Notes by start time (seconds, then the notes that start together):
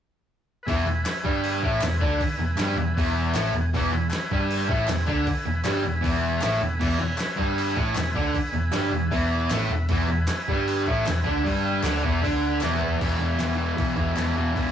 0.63 E1 E2 B4 E5 G#5
0.68 E3, kick, open hi-hat
0.85 E1 E2
1.05 snare, clap, open hi-hat
1.24 G1 G2 G3, kick
1.44 open hi-hat
1.62 A1 A2 A3, kick
1.80 E1 E2, snare, clap, open hi-hat
2.00 D2 D3 D4, kick
2.21 kick, open hi-hat
2.37 E1 E2
2.55 G1 G2 G3, clap, open hi-hat
2.60 snare
2.75 E1 E2
2.97 E1 E2 E3, kick, open hi-hat
3.15 E5
3.33 A1 A2 A3 G#5, snare, clap, open hi-hat
3.53 E1 E2
3.73 E1 E2 E3 B4 E5 G#5, kick, open hi-hat
3.92 E1 E2
4.10 snare, clap, open hi-hat
4.31 G1 G2 G3, kick
4.51 open hi-hat
4.68 A1 A2 A3, kick
4.87 E1 E2, snare, clap, open hi-hat
5.06 D2 D3 D4, kick
5.27 kick, open hi-hat
5.45 E1 E2
5.64 G1 G2 G3, snare, clap, open hi-hat
5.84 E1 E2
6.01 E1 E2 E3, kick, open hi-hat
6.41 A1 A2 A3, snare, clap, open hi-hat
6.60 E1 E2
6.79 E1 E2 E3 B4 E5 G#5, kick, crash
7.00 E1 E2
7.18 snare, clap, open hi-hat
7.36 G1 G2 G3, kick
7.58 open hi-hat
7.74 A1 A2 A3, kick
7.94 E1 E2, snare, clap, open hi-hat
8.14 D2 D3 D4, kick
8.34 kick, open hi-hat
8.52 E1 E2
8.71 G1 G2 G3, snare, clap, open hi-hat
8.90 E1 E2
9.11 E1 E2 E3, kick, open hi-hat
9.34 G#5
9.49 A1 A2 A3 F#5, snare, clap, open hi-hat
9.69 E1 E2
9.73 E5
9.89 E1 E2 E3 B4 E5 G#5, kick, open hi-hat
10.08 E1 E2
10.27 snare, clap, open hi-hat
10.48 G1 G2 G3, kick
10.68 open hi-hat
10.86 A1 A2 A3, kick
11.05 E1 E2, snare, clap, open hi-hat
11.24 D2 D3 D4, kick
11.42 G1 G2 G3
11.46 kick, open hi-hat
11.82 D2 D3 D4, clap, open hi-hat
11.86 snare
12.01 E1 E2 E3, kick
12.20 D2 D3 D4, kick, open hi-hat
12.60 E1 E2 E3, snare, clap, open hi-hat
12.81 floor tom
12.98 E1 E2 B2 E3 B4, kick, open hi-hat, crash
13.03 E5 G#5
13.16 E1 E3
13.20 B2
13.37 E1 E2 B2 E3, snare, clap, open hi-hat
13.55 E2 B2 E3
13.75 E2 B2 E3, open hi-hat
13.79 B1, kick
13.95 E1 E2 B2 E3, kick
14.12 E2 B2 E3, clap
14.18 snare, open hi-hat
14.35 E1 B2 E3
14.53 E1 E2 B2 E3, kick, open hi-hat